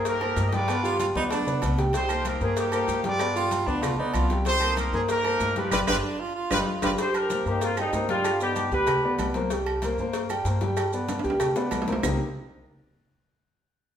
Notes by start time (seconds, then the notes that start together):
Already playing: G2 A#3 A#4 C5
0.05 D#4 G4 A#4, cowbell, high conga, low agogo, maracas
0.21 A#3 A#4 C5, high conga, low agogo
0.36 G2, cowbell, high conga, low timbale, maracas
0.47 D#5
0.53 G3 F4 G4 B4 D5 G5, cowbell, high conga, maracas
0.68 B3 B4 D5, cowbell, high conga, low agogo, maracas
0.83 G3 F4 G4 G5, high conga, maracas
0.99 F4, cowbell, high conga, low agogo, maracas
1.15 D2 B3 D#4 B4 D5, high conga, maracas
1.31 D4, cowbell, high conga, low agogo, maracas
1.47 B3 B4 D5, low conga, maracas
1.62 C2 B3, cowbell, low conga, low timbale, low agogo, maracas
1.78 G3 G4 G5, cowbell, low conga, maracas
1.93 G3 D#4 G4 C5 G5, cowbell, low agogo, maracas
2.09 A#3 A#4 C5, high conga, low agogo, claves, maracas
2.25 A#4, cowbell, high conga, low agogo, maracas
2.41 G2 A#3 G#4 A#4 C5, high conga, maracas
2.57 A#3 D#4 G4, cowbell, high conga, low agogo, maracas
2.72 A#3 A#4 C5, high conga, low agogo, claves, maracas
2.88 G2, cowbell, high conga, low timbale, maracas
3.04 G3 F4 G4 B4 D5 G5, cowbell, high conga, maracas
3.19 B3 B4 D5, cowbell, high conga, low agogo, claves, maracas
3.36 G3 F4 G4 G5, high conga, maracas
3.51 cowbell, high conga, low agogo, maracas
3.67 D2 B3 D4 B4 D5, high conga, maracas
3.82 F4, cowbell, high conga, low conga, low agogo, claves, maracas
3.98 D2 B3 D#4 B4 D5, high conga
4.14 C2 F4, cowbell, high conga, low agogo, claves, maracas
4.30 G3 G4 G5, cowbell, high conga, maracas
4.45 G3 D#4 G4 C5 G5, cowbell, high conga, low agogo, maracas
4.61 A#3 A#4 C5, high conga, low agogo, claves
4.77 A#4, cowbell, high conga, low agogo, maracas
4.93 G2 A#3 G#4 A#4 C5, high conga, maracas
5.08 D#4 G4 A#4, cowbell, high conga, low agogo, maracas
5.25 A#3 A#4 C5, high conga, low agogo, claves
5.40 G2, cowbell, high conga, low timbale, maracas
5.56 G3 D4 F4 G4 B4 G5, cowbell, high conga, maracas
5.71 G1 F4 G4 B4 D5, cowbell, high conga, high timbale, claves, maracas
5.87 G1 D4 F4 G4 B4 D5, cowbell, high conga, high timbale, claves, maracas
6.20 F4
6.35 F4
6.51 G1 F4 G4 B4 D5, cowbell, high conga, high timbale, claves, maracas
6.58 D#4
6.67 F4
6.82 G1 F4 G4 B4 D5, cowbell, high conga, high timbale, claves, maracas
6.98 G3 G4 C5 G5, cowbell, high conga, low agogo, maracas
7.14 G4 A#4, high conga, low agogo, claves, maracas
7.30 A#3 A#4 C5, cowbell, high conga, low agogo, maracas
7.46 G2 A#3 D#4 G4 A#4 C5, high conga, maracas
7.61 C4 F4, cowbell, high conga, low agogo, maracas
7.77 G3 C4 D#4 G4 G5, high conga, low agogo, claves, maracas
7.93 G2 A#3 A#4 C5, cowbell, high conga, low timbale, maracas
8.09 G3 D4 F4 G4 G5, cowbell, high conga, maracas
8.24 cowbell, high conga, low agogo, claves, maracas
8.40 B3 D#4 G4 B4 D5, high conga, maracas
8.56 cowbell, high conga, low agogo, maracas
8.72 D2 G3 G4 B4 G5, high conga, maracas
8.87 cowbell, high conga, low conga, low agogo, claves, maracas
9.04 B3 B4 D5
9.18 C2, cowbell, high conga, low timbale, low agogo, claves, maracas
9.34 A#3 A#4 C5, cowbell, high conga, maracas
9.50 G3 G4 G5, cowbell, high conga, low agogo, maracas
9.66 high conga, low agogo, claves
9.82 A#3 A#4 C5, cowbell, high conga, low agogo, maracas
9.98 G2 A#3 A#4 C5, high conga, maracas
10.13 cowbell, high conga, low agogo, maracas
10.30 G3 G4 G5, high conga, low agogo, claves, maracas
10.45 G2 A#3 A#4 C5, cowbell, high conga, maracas
10.61 G3 G4 G5, cowbell, high conga, maracas
10.77 cowbell, high conga, low agogo, claves, maracas
10.93 B3 B4 D5, high conga, maracas
11.09 cowbell, high conga, high timbale, low agogo, maracas
11.19 high timbale
11.24 D2 G3 G4 G5, high conga, maracas
11.30 high timbale
11.40 cowbell, high conga, low conga, high timbale, low agogo, claves, maracas
11.56 B3 B4 D5, high bongo, high conga, maracas
11.71 C2, cowbell, high conga, low timbale, low agogo, claves, maracas
11.82 low timbale
11.87 A#3 A#4 C5, cowbell, low bongo, high conga, maracas
11.92 low timbale
12.03 C2 C3 G3 A#3 C4 D#4 G4, low bongo, low conga, low timbale, claves, maracas